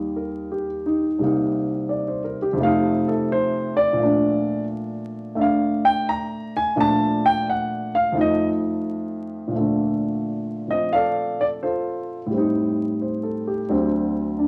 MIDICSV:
0, 0, Header, 1, 2, 480
1, 0, Start_track
1, 0, Key_signature, -2, "major"
1, 0, Tempo, 695249
1, 821, Time_signature, 4, 2, 24, 8
1, 9995, End_track
2, 0, Start_track
2, 0, Title_t, "Grand piano"
2, 0, Program_c, 0, 0
2, 0, Note_on_c, 0, 39, 49
2, 0, Note_on_c, 0, 51, 44
2, 0, Note_on_c, 0, 55, 45
2, 0, Note_on_c, 0, 58, 42
2, 0, Note_on_c, 0, 63, 49
2, 113, Note_on_c, 0, 70, 49
2, 356, Note_on_c, 0, 67, 49
2, 442, Note_off_c, 0, 70, 0
2, 583, Note_off_c, 0, 63, 0
2, 593, Note_on_c, 0, 63, 55
2, 724, Note_off_c, 0, 67, 0
2, 819, Note_off_c, 0, 39, 0
2, 819, Note_on_c, 0, 36, 50
2, 822, Note_off_c, 0, 55, 0
2, 824, Note_off_c, 0, 51, 0
2, 826, Note_off_c, 0, 58, 0
2, 828, Note_on_c, 0, 48, 47
2, 844, Note_off_c, 0, 63, 0
2, 844, Note_on_c, 0, 58, 46
2, 854, Note_on_c, 0, 63, 58
2, 1306, Note_on_c, 0, 74, 49
2, 1437, Note_on_c, 0, 72, 46
2, 1532, Note_off_c, 0, 74, 0
2, 1548, Note_on_c, 0, 70, 51
2, 1638, Note_off_c, 0, 72, 0
2, 1672, Note_on_c, 0, 67, 58
2, 1692, Note_off_c, 0, 70, 0
2, 1748, Note_on_c, 0, 41, 60
2, 1764, Note_off_c, 0, 48, 0
2, 1774, Note_on_c, 0, 48, 59
2, 1781, Note_off_c, 0, 36, 0
2, 1793, Note_off_c, 0, 58, 0
2, 1798, Note_off_c, 0, 63, 0
2, 1798, Note_on_c, 0, 57, 58
2, 1817, Note_on_c, 0, 77, 90
2, 1827, Note_on_c, 0, 63, 74
2, 1834, Note_off_c, 0, 67, 0
2, 2117, Note_off_c, 0, 77, 0
2, 2127, Note_on_c, 0, 69, 69
2, 2267, Note_off_c, 0, 69, 0
2, 2294, Note_on_c, 0, 72, 88
2, 2595, Note_off_c, 0, 72, 0
2, 2601, Note_on_c, 0, 74, 94
2, 2712, Note_on_c, 0, 46, 52
2, 2725, Note_off_c, 0, 41, 0
2, 2736, Note_on_c, 0, 53, 43
2, 2738, Note_off_c, 0, 48, 0
2, 2749, Note_off_c, 0, 57, 0
2, 2759, Note_on_c, 0, 57, 46
2, 2764, Note_off_c, 0, 63, 0
2, 2784, Note_on_c, 0, 62, 59
2, 3200, Note_off_c, 0, 74, 0
2, 3685, Note_off_c, 0, 57, 0
2, 3696, Note_on_c, 0, 57, 49
2, 3705, Note_on_c, 0, 76, 55
2, 3710, Note_off_c, 0, 62, 0
2, 3720, Note_on_c, 0, 62, 55
2, 3735, Note_off_c, 0, 76, 0
2, 3738, Note_on_c, 0, 77, 81
2, 4038, Note_off_c, 0, 77, 0
2, 4039, Note_on_c, 0, 79, 94
2, 4182, Note_off_c, 0, 79, 0
2, 4204, Note_on_c, 0, 82, 103
2, 4510, Note_off_c, 0, 82, 0
2, 4533, Note_on_c, 0, 80, 96
2, 4646, Note_off_c, 0, 46, 0
2, 4658, Note_off_c, 0, 53, 0
2, 4658, Note_off_c, 0, 57, 0
2, 4665, Note_off_c, 0, 62, 0
2, 4666, Note_on_c, 0, 46, 53
2, 4669, Note_off_c, 0, 80, 0
2, 4670, Note_on_c, 0, 53, 49
2, 4673, Note_on_c, 0, 57, 49
2, 4675, Note_on_c, 0, 62, 55
2, 4698, Note_on_c, 0, 81, 107
2, 4997, Note_off_c, 0, 81, 0
2, 5010, Note_on_c, 0, 79, 99
2, 5148, Note_off_c, 0, 79, 0
2, 5175, Note_on_c, 0, 78, 88
2, 5475, Note_off_c, 0, 78, 0
2, 5488, Note_on_c, 0, 77, 98
2, 5607, Note_on_c, 0, 41, 58
2, 5608, Note_off_c, 0, 53, 0
2, 5617, Note_off_c, 0, 57, 0
2, 5618, Note_on_c, 0, 53, 55
2, 5623, Note_off_c, 0, 46, 0
2, 5626, Note_off_c, 0, 77, 0
2, 5627, Note_on_c, 0, 57, 53
2, 5628, Note_off_c, 0, 62, 0
2, 5639, Note_on_c, 0, 63, 67
2, 5667, Note_on_c, 0, 75, 91
2, 5849, Note_off_c, 0, 75, 0
2, 6542, Note_on_c, 0, 46, 46
2, 6560, Note_off_c, 0, 53, 0
2, 6571, Note_on_c, 0, 53, 41
2, 6573, Note_off_c, 0, 41, 0
2, 6583, Note_off_c, 0, 57, 0
2, 6589, Note_off_c, 0, 63, 0
2, 6598, Note_on_c, 0, 57, 41
2, 6620, Note_on_c, 0, 50, 54
2, 7362, Note_off_c, 0, 53, 0
2, 7372, Note_on_c, 0, 53, 42
2, 7388, Note_on_c, 0, 60, 48
2, 7392, Note_on_c, 0, 75, 87
2, 7531, Note_off_c, 0, 75, 0
2, 7544, Note_on_c, 0, 77, 95
2, 7559, Note_on_c, 0, 69, 65
2, 7559, Note_on_c, 0, 74, 66
2, 7865, Note_off_c, 0, 74, 0
2, 7876, Note_on_c, 0, 74, 81
2, 7878, Note_off_c, 0, 77, 0
2, 7910, Note_off_c, 0, 74, 0
2, 8021, Note_off_c, 0, 69, 0
2, 8027, Note_on_c, 0, 72, 67
2, 8032, Note_on_c, 0, 65, 53
2, 8032, Note_on_c, 0, 69, 50
2, 8399, Note_off_c, 0, 72, 0
2, 8467, Note_on_c, 0, 45, 49
2, 8478, Note_off_c, 0, 65, 0
2, 8478, Note_off_c, 0, 69, 0
2, 8480, Note_off_c, 0, 46, 0
2, 8495, Note_off_c, 0, 53, 0
2, 8498, Note_on_c, 0, 55, 43
2, 8503, Note_off_c, 0, 60, 0
2, 8508, Note_off_c, 0, 57, 0
2, 8518, Note_on_c, 0, 60, 47
2, 8519, Note_off_c, 0, 50, 0
2, 8545, Note_on_c, 0, 63, 59
2, 8987, Note_on_c, 0, 72, 43
2, 9135, Note_on_c, 0, 69, 43
2, 9287, Note_off_c, 0, 72, 0
2, 9302, Note_on_c, 0, 67, 52
2, 9387, Note_off_c, 0, 69, 0
2, 9443, Note_off_c, 0, 45, 0
2, 9453, Note_off_c, 0, 60, 0
2, 9454, Note_on_c, 0, 38, 56
2, 9454, Note_on_c, 0, 50, 49
2, 9455, Note_on_c, 0, 54, 50
2, 9458, Note_off_c, 0, 55, 0
2, 9463, Note_on_c, 0, 60, 62
2, 9482, Note_off_c, 0, 63, 0
2, 9550, Note_off_c, 0, 67, 0
2, 9934, Note_on_c, 0, 62, 47
2, 9995, Note_off_c, 0, 38, 0
2, 9995, Note_off_c, 0, 50, 0
2, 9995, Note_off_c, 0, 54, 0
2, 9995, Note_off_c, 0, 60, 0
2, 9995, Note_off_c, 0, 62, 0
2, 9995, End_track
0, 0, End_of_file